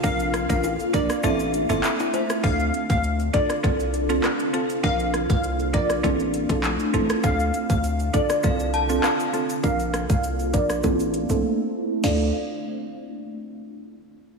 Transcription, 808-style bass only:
\new Staff \with { instrumentName = "808-style bass" } { \clef bass \time 4/4 \key d \minor \tempo 4 = 100 bes,,8. a,,8 r16 bes,,16 r16 a,,8. g,,16 r4 | d,8 r16 d,8. r8 c,4 r4 | bes,,8. c,8. bes,,8 a,,8. bes,,8 r16 a,,16 r16 | d,8 r16 d,8. r8 c,4 r4 |
bes,,8. c,8. bes,,8 a,,8. bes,,16 r4 | d,8 r2. r8 | }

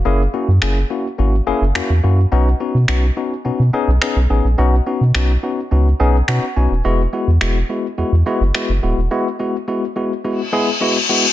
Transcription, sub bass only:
\new Staff \with { instrumentName = "Sub bass" } { \clef bass \time 4/4 \key b \major \tempo 4 = 106 fis,,8 r16 fis,16 fis,,8 r8 gis,,8 fis,,16 fis,,16 e,16 e,16 fis,8 | b,,8 r16 b,16 b,,8 r8 b,16 b,16 r16 b,,16 r16 b,,16 a,,16 ais,,16 | b,,8 r16 b,16 b,,8 r8 cis,8 b,,8 b,16 r16 b,,16 dis,,16 | e,,8 r16 e,16 e,,8 r8 e,16 e,16 r16 fis,,16 r16 fis,,16 d,,16 dis,,16 |
r1 | }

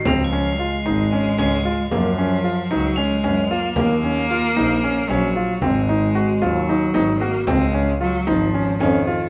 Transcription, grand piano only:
\new Staff \with { instrumentName = "Grand piano" } { \time 7/8 \key des \major \tempo 4 = 113 c'8 des'8 f'8 ees'8 des'8 des'8 f'8 | bes8 des'8 f'8 ees'8 des'8 des'8 f'8 | bes8 des'8 f'8 ees'8 des'8 des'8 f'8 | c'8 ees'8 ges'8 f'8 ees'8 ees'8 ges'8 |
c'8 des'8 f'8 ees'8 des'8 des'8 f'8 | }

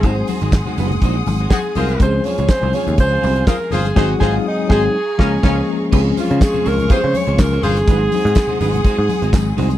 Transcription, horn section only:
\new Staff \with { instrumentName = "Horn section" } { \time 4/4 \key des \major \tempo 4 = 123 <c' ees' aes'>16 r2 r8. <ges' aes' c''>16 r16 <f' aes' c''>8~ | <f' aes' c''>16 r2 r8. <f' aes' c''>16 r16 <f' aes' c''>8 | <aes' c''>8 <aes' c''>8 r8 <aes' c''>8 r8 <des' f' bes'>8 <des' f' bes'>8 r8 | r2 <f' aes' c''>16 r4 r16 <f' aes' c''>8 |
r1 | }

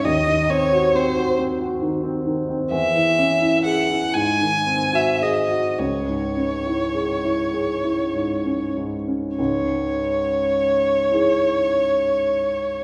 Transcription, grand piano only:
\new Staff \with { instrumentName = "Grand piano" } { \time 6/8 \key cis \minor \tempo 4. = 35 << { r2. | r2. | r2. | r4. <e' gis' cis''>4. | } \\ { ees,16 ees16 c'16 ges'16 c'16 ges'16 c'16 ges'16 ees16 c'16 ees16 c'16 | e,16 e16 cis'16 e'16 gis'16 e'16 gis,16 dis16 bis16 fis'16 gis'16 fis'16 | cis,16 gis,16 cis'16 e'16 gis'16 e'16 gis'16 e'16 gis,16 cis'16 gis,16 cis'16 | <cis, gis,>2. | } >> }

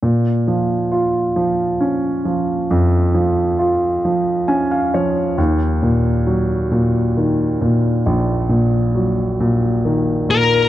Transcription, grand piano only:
<<
  \new Staff \with { instrumentName = "Grand piano" } { \time 6/8 \key bes \minor \tempo 4. = 45 r2. | r2 aes''16 f''16 des''8 | r2. | r2. | }
  \new Staff \with { instrumentName = "Grand piano" } { \clef bass \time 6/8 \key bes \minor bes,8 f8 f'8 f8 des'8 f8 | f,8 f8 f'8 f8 des'8 f8 | ees,8 bes,8 ges8 bes,8 ees8 bes,8 | bes,,8 bes,8 ges8 bes,8 ees8 bes,8 | }
>>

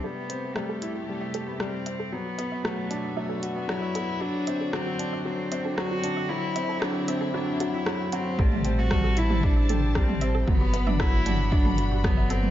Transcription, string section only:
\new Staff \with { instrumentName = "String section" } { \time 4/4 \key a \dorian \tempo 4 = 115 << { g'1 | fis'1~ | fis'1 | e'1 |
a''1 | b''1 | } \\ { <c a>1 | b,1 | <d c'>1~ | <d c'>1 |
<g c''>1 | fis''1 | } >> }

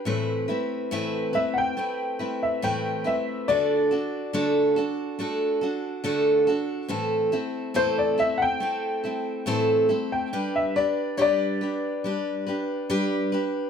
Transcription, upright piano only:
\new Staff \with { instrumentName = "Upright piano" } { \time 4/4 \key a \dorian \tempo 4 = 70 r4. e''16 <fis'' g''>4 e''16 g''8 e''8 | d''2 r2 | r4 c''16 d''16 e''16 <fis'' g''>2 g''16~ | g''16 e''16 d''8 <cis'' d''>2 r4 | }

